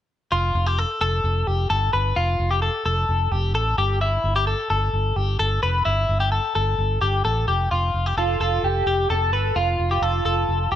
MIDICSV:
0, 0, Header, 1, 4, 480
1, 0, Start_track
1, 0, Tempo, 462606
1, 327, Time_signature, 4, 2, 24, 8
1, 11159, End_track
2, 0, Start_track
2, 0, Title_t, "Clean electric guitar"
2, 0, Program_c, 0, 27
2, 330, Note_on_c, 0, 65, 80
2, 690, Note_off_c, 0, 65, 0
2, 690, Note_on_c, 0, 67, 84
2, 815, Note_off_c, 0, 67, 0
2, 815, Note_on_c, 0, 69, 68
2, 1038, Note_off_c, 0, 69, 0
2, 1050, Note_on_c, 0, 69, 91
2, 1528, Note_off_c, 0, 69, 0
2, 1528, Note_on_c, 0, 67, 66
2, 1760, Note_off_c, 0, 67, 0
2, 1764, Note_on_c, 0, 69, 76
2, 2001, Note_off_c, 0, 69, 0
2, 2006, Note_on_c, 0, 71, 78
2, 2245, Note_on_c, 0, 65, 98
2, 2246, Note_off_c, 0, 71, 0
2, 2584, Note_off_c, 0, 65, 0
2, 2601, Note_on_c, 0, 67, 79
2, 2715, Note_off_c, 0, 67, 0
2, 2719, Note_on_c, 0, 69, 60
2, 2951, Note_off_c, 0, 69, 0
2, 2964, Note_on_c, 0, 69, 78
2, 3442, Note_off_c, 0, 69, 0
2, 3442, Note_on_c, 0, 67, 69
2, 3678, Note_off_c, 0, 67, 0
2, 3682, Note_on_c, 0, 69, 78
2, 3921, Note_off_c, 0, 69, 0
2, 3925, Note_on_c, 0, 67, 82
2, 4160, Note_off_c, 0, 67, 0
2, 4164, Note_on_c, 0, 64, 75
2, 4503, Note_off_c, 0, 64, 0
2, 4522, Note_on_c, 0, 67, 90
2, 4635, Note_off_c, 0, 67, 0
2, 4640, Note_on_c, 0, 69, 67
2, 4866, Note_off_c, 0, 69, 0
2, 4879, Note_on_c, 0, 69, 86
2, 5357, Note_off_c, 0, 69, 0
2, 5357, Note_on_c, 0, 67, 73
2, 5593, Note_off_c, 0, 67, 0
2, 5597, Note_on_c, 0, 69, 74
2, 5835, Note_off_c, 0, 69, 0
2, 5839, Note_on_c, 0, 71, 85
2, 6069, Note_off_c, 0, 71, 0
2, 6073, Note_on_c, 0, 64, 86
2, 6416, Note_off_c, 0, 64, 0
2, 6435, Note_on_c, 0, 67, 73
2, 6551, Note_off_c, 0, 67, 0
2, 6556, Note_on_c, 0, 69, 60
2, 6787, Note_off_c, 0, 69, 0
2, 6800, Note_on_c, 0, 69, 84
2, 7252, Note_off_c, 0, 69, 0
2, 7279, Note_on_c, 0, 67, 76
2, 7516, Note_off_c, 0, 67, 0
2, 7520, Note_on_c, 0, 69, 84
2, 7756, Note_off_c, 0, 69, 0
2, 7760, Note_on_c, 0, 67, 79
2, 7999, Note_off_c, 0, 67, 0
2, 8003, Note_on_c, 0, 65, 76
2, 8366, Note_off_c, 0, 65, 0
2, 8366, Note_on_c, 0, 67, 74
2, 8480, Note_off_c, 0, 67, 0
2, 8484, Note_on_c, 0, 69, 72
2, 8712, Note_off_c, 0, 69, 0
2, 8725, Note_on_c, 0, 69, 87
2, 9175, Note_off_c, 0, 69, 0
2, 9204, Note_on_c, 0, 67, 69
2, 9439, Note_off_c, 0, 67, 0
2, 9444, Note_on_c, 0, 69, 66
2, 9677, Note_off_c, 0, 69, 0
2, 9682, Note_on_c, 0, 71, 73
2, 9919, Note_on_c, 0, 65, 82
2, 9922, Note_off_c, 0, 71, 0
2, 10259, Note_off_c, 0, 65, 0
2, 10283, Note_on_c, 0, 67, 78
2, 10403, Note_off_c, 0, 67, 0
2, 10403, Note_on_c, 0, 69, 71
2, 10628, Note_off_c, 0, 69, 0
2, 10640, Note_on_c, 0, 69, 78
2, 11093, Note_off_c, 0, 69, 0
2, 11120, Note_on_c, 0, 67, 70
2, 11159, Note_off_c, 0, 67, 0
2, 11159, End_track
3, 0, Start_track
3, 0, Title_t, "Clean electric guitar"
3, 0, Program_c, 1, 27
3, 8490, Note_on_c, 1, 65, 72
3, 8963, Note_off_c, 1, 65, 0
3, 8968, Note_on_c, 1, 67, 93
3, 9412, Note_off_c, 1, 67, 0
3, 11159, End_track
4, 0, Start_track
4, 0, Title_t, "Fingered electric bass"
4, 0, Program_c, 2, 33
4, 336, Note_on_c, 2, 29, 80
4, 529, Note_off_c, 2, 29, 0
4, 569, Note_on_c, 2, 29, 94
4, 863, Note_off_c, 2, 29, 0
4, 1051, Note_on_c, 2, 29, 69
4, 1246, Note_off_c, 2, 29, 0
4, 1286, Note_on_c, 2, 29, 83
4, 1483, Note_off_c, 2, 29, 0
4, 1530, Note_on_c, 2, 29, 93
4, 1725, Note_off_c, 2, 29, 0
4, 1768, Note_on_c, 2, 31, 89
4, 1964, Note_off_c, 2, 31, 0
4, 2008, Note_on_c, 2, 31, 84
4, 2204, Note_off_c, 2, 31, 0
4, 2251, Note_on_c, 2, 29, 90
4, 2446, Note_off_c, 2, 29, 0
4, 2486, Note_on_c, 2, 29, 96
4, 2781, Note_off_c, 2, 29, 0
4, 2963, Note_on_c, 2, 29, 79
4, 3161, Note_off_c, 2, 29, 0
4, 3205, Note_on_c, 2, 29, 70
4, 3402, Note_off_c, 2, 29, 0
4, 3441, Note_on_c, 2, 29, 97
4, 3682, Note_off_c, 2, 29, 0
4, 3682, Note_on_c, 2, 33, 103
4, 3880, Note_off_c, 2, 33, 0
4, 3923, Note_on_c, 2, 31, 87
4, 4317, Note_off_c, 2, 31, 0
4, 4398, Note_on_c, 2, 31, 95
4, 4696, Note_off_c, 2, 31, 0
4, 4879, Note_on_c, 2, 31, 86
4, 5078, Note_off_c, 2, 31, 0
4, 5118, Note_on_c, 2, 31, 80
4, 5317, Note_off_c, 2, 31, 0
4, 5357, Note_on_c, 2, 31, 87
4, 5556, Note_off_c, 2, 31, 0
4, 5603, Note_on_c, 2, 31, 90
4, 5800, Note_off_c, 2, 31, 0
4, 5844, Note_on_c, 2, 29, 76
4, 6041, Note_off_c, 2, 29, 0
4, 6083, Note_on_c, 2, 31, 79
4, 6280, Note_off_c, 2, 31, 0
4, 6321, Note_on_c, 2, 31, 87
4, 6617, Note_off_c, 2, 31, 0
4, 6804, Note_on_c, 2, 31, 72
4, 7000, Note_off_c, 2, 31, 0
4, 7039, Note_on_c, 2, 31, 90
4, 7237, Note_off_c, 2, 31, 0
4, 7281, Note_on_c, 2, 31, 92
4, 7478, Note_off_c, 2, 31, 0
4, 7523, Note_on_c, 2, 33, 83
4, 7720, Note_off_c, 2, 33, 0
4, 7761, Note_on_c, 2, 29, 80
4, 7958, Note_off_c, 2, 29, 0
4, 8006, Note_on_c, 2, 29, 79
4, 8201, Note_off_c, 2, 29, 0
4, 8241, Note_on_c, 2, 29, 81
4, 8439, Note_off_c, 2, 29, 0
4, 8480, Note_on_c, 2, 29, 80
4, 8678, Note_off_c, 2, 29, 0
4, 8717, Note_on_c, 2, 29, 81
4, 8916, Note_off_c, 2, 29, 0
4, 8958, Note_on_c, 2, 29, 76
4, 9157, Note_off_c, 2, 29, 0
4, 9198, Note_on_c, 2, 29, 77
4, 9397, Note_off_c, 2, 29, 0
4, 9441, Note_on_c, 2, 29, 90
4, 9681, Note_off_c, 2, 29, 0
4, 9681, Note_on_c, 2, 31, 69
4, 9878, Note_off_c, 2, 31, 0
4, 9918, Note_on_c, 2, 29, 80
4, 10117, Note_off_c, 2, 29, 0
4, 10162, Note_on_c, 2, 29, 83
4, 10359, Note_off_c, 2, 29, 0
4, 10395, Note_on_c, 2, 29, 91
4, 10595, Note_off_c, 2, 29, 0
4, 10636, Note_on_c, 2, 29, 79
4, 10836, Note_off_c, 2, 29, 0
4, 10880, Note_on_c, 2, 29, 83
4, 11078, Note_off_c, 2, 29, 0
4, 11120, Note_on_c, 2, 29, 82
4, 11159, Note_off_c, 2, 29, 0
4, 11159, End_track
0, 0, End_of_file